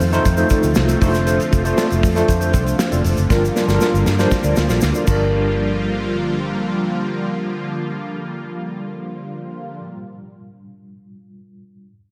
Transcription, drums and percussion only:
0.00 open hi-hat medium
0.00 shaker soft
0.13 snare soft
0.13 closed hi-hat medium
0.13 shaker soft
0.25 kick medium
0.25 closed hi-hat medium
0.25 shaker medium
0.37 closed hi-hat medium
0.37 shaker medium
0.49 kick medium
0.49 closed hi-hat medium
0.49 shaker medium
0.63 closed hi-hat soft
0.63 shaker medium
0.75 snare loud
0.75 shaker medium
0.89 closed hi-hat medium
0.89 shaker medium
1.01 kick loud
1.01 open hi-hat medium
1.01 shaker medium
1.14 snare soft
1.14 closed hi-hat medium
1.14 shaker soft
1.27 closed hi-hat medium
1.27 shaker medium
1.40 closed hi-hat medium
1.40 shaker soft
1.53 kick loud
1.53 closed hi-hat medium
1.53 shaker soft
1.65 closed hi-hat medium
1.65 shaker soft
1.78 snare loud
1.78 shaker medium
1.90 closed hi-hat medium
1.90 shaker soft
2.03 kick loud
2.03 open hi-hat medium
2.03 shaker medium
2.16 snare soft
2.16 closed hi-hat medium
2.16 shaker soft
2.28 kick medium
2.28 closed hi-hat medium
2.28 shaker medium
2.41 closed hi-hat medium
2.41 shaker medium
2.53 kick medium
2.53 closed hi-hat medium
2.53 shaker medium
2.66 closed hi-hat medium
2.66 shaker medium
2.79 snare loud
2.79 shaker medium
2.92 closed hi-hat medium
2.92 shaker soft
3.04 open hi-hat medium
3.04 shaker medium
3.17 closed hi-hat medium
3.17 shaker soft
3.30 kick loud
3.30 snare medium
3.30 shaker medium
3.45 shaker soft
3.56 snare medium
3.56 shaker soft
3.69 snare medium
3.69 shaker soft
3.81 snare medium
3.81 shaker medium
3.95 shaker soft
4.06 snare medium
4.06 shaker soft
4.19 snare medium
4.19 shaker soft
4.31 kick medium
4.31 snare medium
4.31 shaker medium
4.43 shaker medium
4.56 snare medium
4.56 shaker medium
4.70 snare medium
4.70 shaker medium
4.81 snare loud
4.81 shaker medium
4.95 shaker medium
5.07 kick medium
5.07 crash medium
5.07 shaker medium

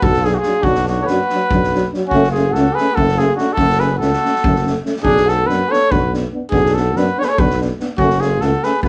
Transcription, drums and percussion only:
0.02 kick loud
0.13 snare soft
0.25 snare soft
0.43 snare soft
0.63 kick medium
0.75 snare soft
0.87 snare soft
1.07 snare soft
1.29 snare soft
1.51 kick medium
1.63 snare soft
1.75 snare soft
1.94 snare soft
2.11 kick medium
2.23 snare soft
2.34 snare soft
2.55 snare soft
2.78 snare soft
2.97 kick medium
3.08 snare soft
3.19 snare soft
3.38 snare soft
3.57 kick medium
3.70 snare soft
3.80 snare soft
4.01 snare soft
4.13 snare soft
4.25 snare soft
4.35 snare soft
4.44 kick loud
4.55 snare soft
4.67 snare soft
4.86 snare soft
4.96 snare soft
5.05 kick medium
5.17 snare soft
5.28 snare soft
5.49 snare soft
5.73 snare soft
5.92 kick loud
6.14 snare soft
6.52 kick medium
6.66 snare soft
6.77 snare soft
6.96 snare soft
7.21 snare soft
7.38 kick loud
7.50 snare soft
7.61 snare soft
7.80 snare soft
7.98 kick medium
8.10 snare soft
8.21 snare soft
8.41 snare soft
8.63 snare soft
8.83 kick medium

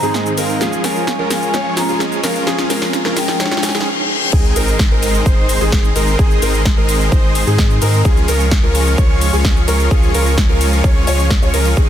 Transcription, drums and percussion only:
0.03 shaker soft
0.14 snare medium
0.14 shaker soft
0.26 shaker soft
0.38 open hi-hat loud
0.38 shaker medium
0.49 shaker soft
0.61 snare medium
0.61 shaker soft
0.73 shaker soft
0.84 snare medium
0.84 open hi-hat loud
0.84 shaker medium
0.96 shaker soft
1.07 snare medium
1.07 shaker soft
1.31 snare medium
1.31 open hi-hat loud
1.31 shaker medium
1.42 shaker soft
1.54 snare medium
1.54 shaker soft
1.77 snare medium
1.77 open hi-hat loud
1.77 shaker medium
1.89 shaker soft
2.00 snare medium
2.00 shaker soft
2.12 shaker soft
2.24 snare medium
2.24 open hi-hat loud
2.24 shaker medium
2.35 shaker soft
2.47 snare medium
2.47 shaker soft
2.58 snare medium
2.58 shaker soft
2.70 snare medium
2.70 open hi-hat loud
2.70 shaker medium
2.82 snare medium
2.82 shaker soft
2.93 snare loud
2.93 shaker soft
3.05 snare medium
3.17 snare loud
3.17 open hi-hat loud
3.17 shaker medium
3.28 snare medium
3.28 shaker soft
3.40 snare loud
3.40 shaker soft
3.46 snare medium
3.51 snare medium
3.51 shaker soft
3.57 snare medium
3.63 snare loud
3.63 open hi-hat loud
3.63 shaker medium
3.69 snare medium
3.75 snare medium
3.75 shaker soft
3.81 snare medium
4.33 kick loud
4.33 crash loud
4.33 shaker soft
4.45 shaker soft
4.56 open hi-hat loud
4.56 shaker medium
4.68 shaker soft
4.79 kick loud
4.79 snare loud
4.79 shaker soft
5.03 open hi-hat loud
5.03 shaker medium
5.14 shaker soft
5.26 kick loud
5.26 shaker soft
5.49 open hi-hat loud
5.49 shaker medium
5.61 shaker soft
5.72 kick loud
5.72 snare loud
5.72 shaker soft
5.84 shaker soft
5.96 open hi-hat loud
5.96 shaker medium
6.08 shaker soft
6.19 kick loud
6.19 shaker soft
6.31 shaker soft
6.42 open hi-hat loud
6.42 shaker medium
6.54 shaker soft
6.65 kick loud
6.65 snare loud
6.65 shaker soft
6.89 open hi-hat loud
6.89 shaker medium
7.01 shaker soft
7.12 kick loud
7.12 shaker soft
7.35 open hi-hat loud
7.35 shaker medium
7.47 shaker soft
7.58 kick loud
7.58 snare loud
7.58 shaker soft
7.70 shaker soft
7.82 open hi-hat loud
7.82 shaker medium
7.94 shaker soft
8.05 kick loud
8.05 shaker soft
8.17 shaker soft
8.28 open hi-hat loud
8.28 shaker medium
8.40 shaker soft
8.51 kick loud
8.51 snare loud
8.51 shaker soft
8.75 open hi-hat loud
8.75 shaker medium
8.87 shaker soft
8.98 kick loud
8.98 shaker soft
9.21 open hi-hat loud
9.21 shaker medium
9.33 shaker soft
9.45 kick loud
9.45 snare loud
9.45 shaker soft
9.57 shaker soft
9.68 open hi-hat loud
9.68 shaker medium
9.80 shaker soft
9.91 kick loud
9.91 shaker soft
10.03 shaker soft
10.14 open hi-hat loud
10.14 shaker medium
10.26 shaker soft
10.38 kick loud
10.38 snare loud
10.38 shaker soft
10.61 open hi-hat loud
10.61 shaker medium
10.73 shaker soft
10.84 kick loud
10.84 shaker soft
11.07 open hi-hat loud
11.07 shaker medium
11.19 shaker soft
11.30 kick loud
11.30 snare loud
11.30 shaker soft
11.42 shaker soft
11.54 open hi-hat loud
11.54 shaker medium
11.65 open hi-hat medium
11.65 shaker soft
11.77 kick loud
11.77 shaker soft

